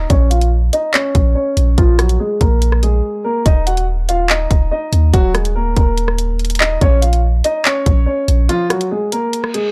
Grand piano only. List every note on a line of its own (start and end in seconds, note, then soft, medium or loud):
0.10 0.28 C#4 medium
0.10 0.27 C#5 loud
0.30 0.48 F4 medium
0.30 0.48 F5 medium
0.73 0.91 D#4 medium
0.73 0.90 D#5 medium
0.94 1.34 C#4 medium
0.94 1.33 C#5 loud
1.35 1.75 C#4 medium
1.35 1.75 C#5 medium
1.78 1.95 F3 medium
1.78 1.95 F4 loud
1.98 2.16 F#3 medium
1.98 2.16 F#4 medium
2.20 2.37 G#3 medium
2.20 2.37 G#4 medium
2.40 2.81 A#3 medium
2.40 2.80 A#4 medium
2.83 3.23 G#3 medium
2.83 3.22 G#4 medium
3.24 3.42 A#3 medium
3.24 3.42 A#4 medium
3.46 3.63 D#4 medium
3.46 3.63 D#5 medium
3.67 3.84 F#4 medium
3.67 3.84 F#5 medium
4.09 4.26 F4 medium
4.09 4.26 F5 medium
4.30 4.70 D#4 medium
4.30 4.69 D#5 medium
4.71 5.11 D#4 medium
4.71 5.11 D#5 medium
5.14 5.31 F#3 medium
5.14 5.31 F#4 loud
5.34 5.52 G#3 medium
5.34 5.51 G#4 medium
5.55 5.73 A#3 medium
5.55 5.73 A#4 medium
5.77 6.57 A#3 medium
5.77 6.56 A#4 medium
6.60 6.78 D#4 medium
6.60 6.77 D#5 medium
6.82 6.99 C#4 medium
6.82 6.99 C#5 loud
7.02 7.20 F4 medium
7.02 7.19 F5 medium
7.45 7.62 D#4 medium
7.45 7.62 D#5 medium
7.65 8.05 C#4 medium
7.65 8.05 C#5 loud
8.06 8.47 C#4 medium
8.06 8.46 C#5 medium
8.49 8.67 F3 medium
8.49 8.66 F4 loud
8.70 8.87 F#3 medium
8.70 8.87 F#4 medium
8.91 9.09 G#3 medium
8.91 9.08 G#4 medium
9.12 9.52 A#3 medium
9.12 9.52 A#4 medium
9.54 9.72 G#3 medium
9.54 9.72 G#4 medium